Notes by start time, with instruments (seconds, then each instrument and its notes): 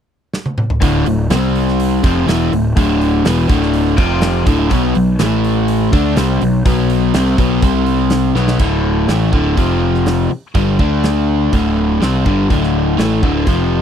0.34 snare
0.46 high tom
0.58 mid tom
0.70 floor tom
0.81 picked electric bass D1, overdriven electric guitar D2 A2 D3, kick, open hi-hat
1.06 picked electric bass D1, overdriven electric guitar D2 A2, open hi-hat
1.30 picked electric bass C2, overdriven electric guitar C3 G3 C4, snare, open hi-hat
1.55 open hi-hat
1.68 snare
1.80 open hi-hat
2.03 picked electric bass F1, overdriven electric guitar F2 C3 F3, kick, open hi-hat
2.27 picked electric bass E1, overdriven electric guitar E2 B2 E3, snare, open hi-hat
2.52 picked electric bass D1, overdriven electric guitar D2 A2, open hi-hat
2.76 picked electric bass D1, overdriven electric guitar D2 A2 D3, kick, open hi-hat
3.01 open hi-hat
3.24 picked electric bass E1, overdriven electric guitar E2 B2 E3, snare, open hi-hat
3.48 picked electric bass D1, overdriven electric guitar D2 A2 D3, kick, open hi-hat
3.62 snare
3.74 open hi-hat
3.96 picked electric bass F1, overdriven electric guitar F2 C3 F3, kick, open hi-hat
4.21 snare, open hi-hat
4.45 picked electric bass D1, overdriven electric guitar D2 A2 D3, kick, open hi-hat
4.70 picked electric bass B1, overdriven electric guitar B2 F#3 B3, kick, open hi-hat
4.95 picked electric bass B1, overdriven electric guitar B2 F#3, open hi-hat
5.18 picked electric bass A1, overdriven electric guitar A2 E3 A3, snare, open hi-hat
5.45 open hi-hat
5.68 open hi-hat
5.92 picked electric bass D2, overdriven electric guitar D3 A3 D4, kick, open hi-hat
6.16 picked electric bass C2, overdriven electric guitar C3 G3 C4, snare, open hi-hat
6.41 picked electric bass B1, overdriven electric guitar B2 F#3, open hi-hat
6.65 picked electric bass B1, overdriven electric guitar B2 F#3 B3, kick, open hi-hat
6.90 open hi-hat
7.14 picked electric bass C2, overdriven electric guitar C3 G3 C4, snare, open hi-hat
7.38 picked electric bass B1, overdriven electric guitar B2 F#3 B3, kick, open hi-hat
7.62 picked electric bass C2, overdriven electric guitar C3 G3 C4, kick, open hi-hat
7.86 open hi-hat
8.10 snare, open hi-hat
8.34 picked electric bass B1, overdriven electric guitar B2 F#3 B3, snare
8.48 snare
8.59 picked electric bass D1, overdriven electric guitar D2 A2 D3, kick, crash
9.07 picked electric bass A1, overdriven electric guitar A2 E3 A3, snare, open hi-hat
9.33 picked electric bass D1, overdriven electric guitar D2 A2 D3, kick
9.57 picked electric bass F1, overdriven electric guitar F2 C3 F3, kick, open hi-hat
9.95 snare
10.06 snare, open hi-hat
10.30 muted picked electric bass stroke, muted overdriven electric guitar stroke
10.55 picked electric bass G1, overdriven electric guitar G2 D3 G3, kick, open hi-hat
10.79 picked electric bass D2, overdriven electric guitar D3 A3 D4, kick
11.04 snare, open hi-hat
11.53 picked electric bass D1, overdriven electric guitar D2 A2 D3, kick, open hi-hat
12.01 picked electric bass C2, overdriven electric guitar C3 G3 C4, snare, open hi-hat
12.25 picked electric bass G1, overdriven electric guitar G2 D3 G3, kick
12.50 picked electric bass D1, overdriven electric guitar D2 A2 D3, kick, open hi-hat
12.63 snare
12.98 picked electric bass A1, overdriven electric guitar A2 E3 A3, snare, open hi-hat
13.22 picked electric bass D1, overdriven electric guitar D2 A2 D3, kick
13.47 picked electric bass F1, overdriven electric guitar F2 C3 F3, kick, open hi-hat